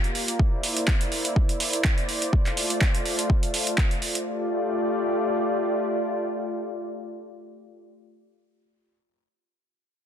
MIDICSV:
0, 0, Header, 1, 3, 480
1, 0, Start_track
1, 0, Key_signature, -1, "major"
1, 0, Tempo, 483871
1, 389, Time_signature, 4, 2, 24, 8
1, 9973, End_track
2, 0, Start_track
2, 0, Title_t, "Analog synth pad"
2, 0, Program_c, 0, 89
2, 0, Note_on_c, 0, 58, 81
2, 0, Note_on_c, 0, 65, 74
2, 0, Note_on_c, 0, 67, 75
2, 0, Note_on_c, 0, 74, 93
2, 350, Note_off_c, 0, 65, 0
2, 350, Note_off_c, 0, 67, 0
2, 351, Note_off_c, 0, 74, 0
2, 389, Note_on_c, 0, 64, 78
2, 389, Note_on_c, 0, 72, 75
2, 389, Note_on_c, 0, 74, 92
2, 2271, Note_off_c, 0, 58, 0
2, 2290, Note_off_c, 0, 64, 0
2, 2311, Note_on_c, 0, 65, 72
2, 2312, Note_on_c, 0, 57, 84
2, 4191, Note_off_c, 0, 72, 0
2, 4191, Note_off_c, 0, 74, 0
2, 4211, Note_off_c, 0, 57, 0
2, 4211, Note_off_c, 0, 65, 0
2, 4228, Note_on_c, 0, 65, 71
2, 4228, Note_on_c, 0, 67, 75
2, 4228, Note_on_c, 0, 74, 91
2, 4229, Note_on_c, 0, 57, 81
2, 7844, Note_off_c, 0, 65, 0
2, 7844, Note_off_c, 0, 67, 0
2, 7844, Note_off_c, 0, 74, 0
2, 7845, Note_off_c, 0, 57, 0
2, 9973, End_track
3, 0, Start_track
3, 0, Title_t, "Drums"
3, 41, Note_on_c, 9, 42, 35
3, 140, Note_off_c, 9, 42, 0
3, 149, Note_on_c, 9, 46, 81
3, 248, Note_off_c, 9, 46, 0
3, 280, Note_on_c, 9, 42, 59
3, 379, Note_off_c, 9, 42, 0
3, 391, Note_on_c, 9, 36, 101
3, 490, Note_off_c, 9, 36, 0
3, 630, Note_on_c, 9, 46, 91
3, 729, Note_off_c, 9, 46, 0
3, 759, Note_on_c, 9, 42, 64
3, 859, Note_off_c, 9, 42, 0
3, 870, Note_on_c, 9, 39, 107
3, 871, Note_on_c, 9, 36, 92
3, 969, Note_off_c, 9, 39, 0
3, 970, Note_off_c, 9, 36, 0
3, 1000, Note_on_c, 9, 42, 50
3, 1099, Note_off_c, 9, 42, 0
3, 1109, Note_on_c, 9, 46, 79
3, 1208, Note_off_c, 9, 46, 0
3, 1239, Note_on_c, 9, 42, 63
3, 1338, Note_off_c, 9, 42, 0
3, 1351, Note_on_c, 9, 36, 98
3, 1450, Note_off_c, 9, 36, 0
3, 1479, Note_on_c, 9, 42, 50
3, 1578, Note_off_c, 9, 42, 0
3, 1588, Note_on_c, 9, 46, 97
3, 1688, Note_off_c, 9, 46, 0
3, 1720, Note_on_c, 9, 42, 64
3, 1819, Note_off_c, 9, 42, 0
3, 1830, Note_on_c, 9, 39, 107
3, 1831, Note_on_c, 9, 36, 91
3, 1930, Note_off_c, 9, 36, 0
3, 1930, Note_off_c, 9, 39, 0
3, 1961, Note_on_c, 9, 42, 36
3, 2060, Note_off_c, 9, 42, 0
3, 2070, Note_on_c, 9, 46, 81
3, 2169, Note_off_c, 9, 46, 0
3, 2201, Note_on_c, 9, 42, 59
3, 2301, Note_off_c, 9, 42, 0
3, 2311, Note_on_c, 9, 36, 102
3, 2410, Note_off_c, 9, 36, 0
3, 2442, Note_on_c, 9, 42, 34
3, 2444, Note_on_c, 9, 39, 34
3, 2541, Note_off_c, 9, 42, 0
3, 2543, Note_off_c, 9, 39, 0
3, 2550, Note_on_c, 9, 46, 93
3, 2650, Note_off_c, 9, 46, 0
3, 2681, Note_on_c, 9, 42, 63
3, 2780, Note_off_c, 9, 42, 0
3, 2791, Note_on_c, 9, 36, 90
3, 2793, Note_on_c, 9, 39, 109
3, 2890, Note_off_c, 9, 36, 0
3, 2892, Note_off_c, 9, 39, 0
3, 2922, Note_on_c, 9, 42, 51
3, 3021, Note_off_c, 9, 42, 0
3, 3031, Note_on_c, 9, 46, 77
3, 3130, Note_off_c, 9, 46, 0
3, 3162, Note_on_c, 9, 42, 62
3, 3261, Note_off_c, 9, 42, 0
3, 3271, Note_on_c, 9, 36, 102
3, 3370, Note_off_c, 9, 36, 0
3, 3401, Note_on_c, 9, 42, 51
3, 3501, Note_off_c, 9, 42, 0
3, 3510, Note_on_c, 9, 46, 92
3, 3609, Note_off_c, 9, 46, 0
3, 3640, Note_on_c, 9, 42, 66
3, 3740, Note_off_c, 9, 42, 0
3, 3750, Note_on_c, 9, 36, 89
3, 3750, Note_on_c, 9, 39, 107
3, 3849, Note_off_c, 9, 36, 0
3, 3849, Note_off_c, 9, 39, 0
3, 3880, Note_on_c, 9, 42, 35
3, 3979, Note_off_c, 9, 42, 0
3, 3988, Note_on_c, 9, 46, 79
3, 4087, Note_off_c, 9, 46, 0
3, 4119, Note_on_c, 9, 42, 62
3, 4218, Note_off_c, 9, 42, 0
3, 9973, End_track
0, 0, End_of_file